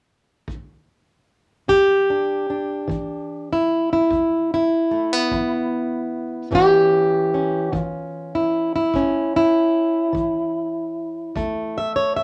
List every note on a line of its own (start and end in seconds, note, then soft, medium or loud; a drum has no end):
0.48 kick medium
1.68 2.41 E2 medium
1.68 3.50 G4 loud
1.68 kick medium
2.10 2.49 D4 soft
2.50 3.50 D4 soft
2.88 3.61 E3 medium
2.88 kick medium
3.53 3.91 E4 medium
3.93 4.52 E4 medium
4.10 4.83 E2 medium
4.10 kick medium
4.54 6.53 E4 medium
4.91 5.13 A3 soft
5.13 6.52 B3 soft
5.31 6.04 E3 medium
5.31 kick medium
6.51 7.24 A2 medium
6.51 7.72 E3 soft
6.51 7.34 C#4 soft
6.51 kick medium
6.55 7.78 G4 loud
7.34 8.95 C#4 soft
7.73 8.45 E3 medium
7.73 kick medium
7.78 8.35 F4 loud
8.35 8.74 E4 medium
8.76 9.35 E4 medium
8.94 9.67 A2 medium
8.94 11.36 C#4 soft
8.94 kick medium
9.36 11.77 E4 medium
10.13 10.86 E3 medium
10.13 kick medium
11.35 12.08 E2 medium
11.35 12.23 A3 medium
11.35 kick medium
11.78 11.96 E5 medium
11.96 12.16 C#5 medium
12.16 12.23 E5 medium